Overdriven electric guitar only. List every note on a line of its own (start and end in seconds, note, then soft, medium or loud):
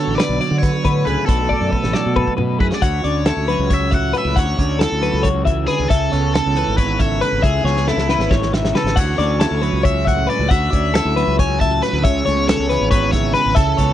0.00 0.18 A4 medium
0.15 0.58 D5 medium
0.59 1.06 C#5 loud
1.05 1.25 B4 medium
1.26 2.33 A4 medium
2.61 2.66 B4 medium
2.75 2.82 D5 medium
2.84 3.28 C#5 medium
3.29 3.73 C#5 medium
3.74 3.94 E5 loud
3.95 4.14 F#5 medium
4.18 4.38 E5 medium
4.39 4.82 C#5 medium
4.82 5.27 A4 medium
5.67 5.89 G#4 medium
5.89 6.33 A4 medium
6.34 6.77 A4 medium
6.77 7.00 B4 loud
7.00 7.20 C#5 medium
7.21 7.43 B4 loud
7.43 7.89 G#4 medium
7.88 8.34 E4 medium
8.77 8.99 A4 medium
8.99 9.40 C#5 medium
9.41 9.85 C#5 medium
9.85 10.08 E5 medium
10.08 10.29 F#5 medium
10.30 10.50 D5 medium
10.51 10.94 E5 loud
10.95 11.35 E5 medium
11.40 11.59 G#5 loud
11.60 11.80 A5 medium
11.82 12.02 B4 medium
12.04 12.47 C#5 loud
12.48 12.88 C#5 loud
12.91 13.12 B4 loud
13.12 13.34 C#5 medium
13.35 13.55 B4 medium
13.55 13.93 A4 medium